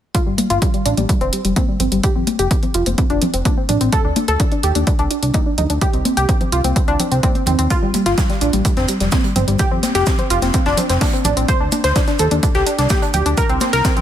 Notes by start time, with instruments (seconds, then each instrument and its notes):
0.15 synth pluck F4, kick, closed hi-hat
0.27 analog synth bass G1, synth pluck G3
0.38 synth pluck G3, closed hi-hat, high conga
0.50 analog synth bass G1, synth pluck F4, closed hi-hat
0.62 synth pluck G3, kick, closed hi-hat
0.74 synth pluck G3, closed hi-hat
0.85 analog synth bass A1, synth pluck D4, closed hi-hat
0.97 analog synth bass A1, synth pluck G3, closed hi-hat, high conga
1.09 synth pluck G3, kick, closed hi-hat
1.21 analog synth bass F1, synth pluck C4, closed hi-hat
1.33 synth pluck G3, closed hi-hat
1.45 analog synth bass F1, synth pluck G3, closed hi-hat
1.56 synth pluck C4, kick, closed hi-hat, high conga
1.68 synth pluck G3
1.80 analog synth bass G1, synth pluck C4, closed hi-hat, low conga
1.92 analog synth bass G1, synth pluck G3, closed hi-hat
2.03 synth pluck G4, kick, closed hi-hat
2.16 analog synth bass F2, synth pluck C4
2.27 synth pluck C4, closed hi-hat, high conga
2.39 analog synth bass F1, synth pluck G4, closed hi-hat
2.51 synth pluck C4, kick, closed hi-hat
2.63 synth pluck C4, closed hi-hat, low conga
2.74 analog synth bass F1, synth pluck F4, closed hi-hat
2.86 analog synth bass F1, synth pluck C4, closed hi-hat, high conga
2.98 synth pluck C4, kick, closed hi-hat
3.10 analog synth bass F1, synth pluck D4, closed hi-hat
3.22 synth pluck C4, closed hi-hat, low conga
3.34 analog synth bass F1, synth pluck C4, closed hi-hat
3.45 synth pluck D4, kick, closed hi-hat, high conga
3.57 synth pluck C4
3.69 analog synth bass A1, synth pluck D4, closed hi-hat, low conga
3.81 analog synth bass A1, synth pluck C4, closed hi-hat
3.92 synth pluck A4, kick, closed hi-hat
4.05 analog synth bass D2, synth pluck D4
4.16 synth pluck D4, closed hi-hat, high conga
4.28 analog synth bass D2, synth pluck A4, closed hi-hat
4.40 synth pluck D4, kick, closed hi-hat
4.52 synth pluck D4, closed hi-hat
4.63 analog synth bass D#2, synth pluck G4, closed hi-hat
4.75 analog synth bass D#2, synth pluck D4, closed hi-hat, high conga
4.87 synth pluck D4, kick, closed hi-hat
4.99 analog synth bass C2, synth pluck D4, closed hi-hat
5.11 synth pluck D4, closed hi-hat
5.23 analog synth bass C2, synth pluck D4, closed hi-hat
5.34 synth pluck D#4, kick, closed hi-hat, high conga
5.46 synth pluck D4
5.58 analog synth bass D2, synth pluck D#4, closed hi-hat, low conga
5.70 analog synth bass D2, synth pluck D4, closed hi-hat
5.81 synth pluck G4, kick, closed hi-hat
5.93 analog synth bass C2, synth pluck C4, closed hi-hat
6.05 synth pluck C4, closed hi-hat, high conga
6.17 analog synth bass C2, synth pluck G4, closed hi-hat
6.29 synth pluck C4, kick, closed hi-hat
6.41 synth pluck C4, closed hi-hat, low conga
6.52 analog synth bass C2, synth pluck F4, closed hi-hat
6.64 analog synth bass C2, synth pluck C4, closed hi-hat, high conga
6.76 synth pluck C4, kick, closed hi-hat
6.88 analog synth bass C2, synth pluck D4, closed hi-hat
6.99 synth pluck C4, closed hi-hat, low conga
7.12 analog synth bass C2, synth pluck C4, closed hi-hat
7.23 synth pluck C4, kick, closed hi-hat, high conga
7.35 synth pluck C4, closed hi-hat
7.46 analog synth bass D#2, synth pluck C4, closed hi-hat, low conga
7.59 analog synth bass D#2, synth pluck C4, closed hi-hat
7.70 synth pluck F4, kick, closed hi-hat, shaker
7.82 analog synth bass G1, synth pluck G3
7.94 synth pluck G3, closed hi-hat, high conga, shaker
8.06 analog synth bass G1, synth pluck F4, snare, closed hi-hat
8.18 synth pluck G3, kick, snare, closed hi-hat, shaker
8.30 synth pluck G3, snare, closed hi-hat
8.41 analog synth bass A1, synth pluck D4, closed hi-hat, shaker
8.53 analog synth bass A1, synth pluck G3, closed hi-hat, high conga
8.65 synth pluck G3, kick, closed hi-hat, shaker
8.77 analog synth bass F1, synth pluck C4, snare, closed hi-hat
8.88 synth pluck G3, closed hi-hat, shaker
9.00 analog synth bass F1, synth pluck G3, snare, closed hi-hat
9.11 synth pluck C4, kick, snare, closed hi-hat, high conga, shaker
9.24 synth pluck G3, closed hi-hat
9.36 analog synth bass G1, synth pluck C4, closed hi-hat, low conga, shaker
9.48 analog synth bass G1, synth pluck G3, closed hi-hat
9.59 synth pluck G4, kick, closed hi-hat, shaker
9.71 analog synth bass F2, synth pluck C4
9.82 synth pluck C4, snare, closed hi-hat, high conga, shaker
9.95 analog synth bass F1, synth pluck G4, snare, closed hi-hat
10.06 synth pluck C4, kick, snare, closed hi-hat, shaker
10.18 synth pluck C4, closed hi-hat, low conga
10.30 analog synth bass F1, synth pluck F4, closed hi-hat, shaker
10.42 analog synth bass F1, synth pluck C4, snare, closed hi-hat, high conga
10.54 synth pluck C4, kick, closed hi-hat, shaker
10.66 analog synth bass F1, synth pluck D4, snare, closed hi-hat
10.77 synth pluck C4, closed hi-hat, low conga, shaker
10.89 analog synth bass F1, synth pluck C4, snare, closed hi-hat
11.01 synth pluck D4, kick, snare, closed hi-hat, open hi-hat, high conga
11.13 synth pluck C4, closed hi-hat
11.24 analog synth bass A1, synth pluck D4, closed hi-hat, low conga, shaker
11.37 analog synth bass A1, synth pluck C4, closed hi-hat
11.48 synth pluck C5, kick, closed hi-hat, shaker
11.60 analog synth bass D2, synth pluck D4
11.72 synth pluck D4, closed hi-hat, high conga, shaker
11.84 analog synth bass D2, synth pluck C5, snare, closed hi-hat
11.96 synth pluck D4, kick, snare, closed hi-hat, shaker
12.08 synth pluck D4, snare, closed hi-hat
12.19 analog synth bass D#2, synth pluck A4, closed hi-hat, shaker
12.31 analog synth bass D#2, synth pluck D4, closed hi-hat, high conga
12.43 synth pluck D4, kick, closed hi-hat, shaker
12.54 analog synth bass C2, synth pluck G4, snare, closed hi-hat
12.67 synth pluck D4, closed hi-hat, shaker
12.79 analog synth bass C2, synth pluck D4, snare, closed hi-hat
12.89 synth pluck G4, kick, snare, closed hi-hat, high conga, shaker
13.02 synth pluck D4, closed hi-hat
13.14 analog synth bass D2, synth pluck G4, closed hi-hat, low conga, shaker
13.26 analog synth bass D2, synth pluck D4, closed hi-hat
13.37 synth pluck A#4, kick, closed hi-hat, shaker
13.49 analog synth bass C2, synth pluck C4, closed hi-hat
13.60 synth pluck C4, snare, closed hi-hat, high conga, shaker
13.73 analog synth bass C2, synth pluck A#4, snare, closed hi-hat
13.84 synth pluck C4, kick, snare, closed hi-hat, shaker
13.97 synth pluck C4, closed hi-hat, low conga